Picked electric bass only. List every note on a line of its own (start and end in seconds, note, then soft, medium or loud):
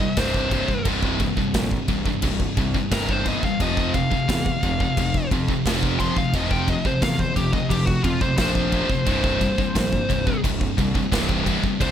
0.17 0.59 C1 medium
0.85 1.28 C1 medium
1.54 1.76 A#1 loud
1.88 2.09 C1 medium
2.23 2.44 C1 medium
2.57 2.78 C2 medium
2.92 3.34 G1 medium
3.60 4.02 F1 medium
4.29 4.50 E2 medium
4.63 4.84 F1 medium
4.97 5.18 F1 medium
5.31 5.52 F2 loud
5.66 6.08 F1 medium
6.33 6.76 F1 medium
7.02 7.23 E2 medium
7.36 7.57 F1 medium
7.70 7.91 F1 medium
8.04 8.25 F2 medium
8.38 8.80 A#1 medium
9.07 9.49 C1 medium
9.76 9.97 A#1 medium
10.10 10.31 C1 medium
10.44 10.65 C1 medium
10.78 10.99 C2 medium
11.12 11.54 C1 medium
11.80 11.91 C1 medium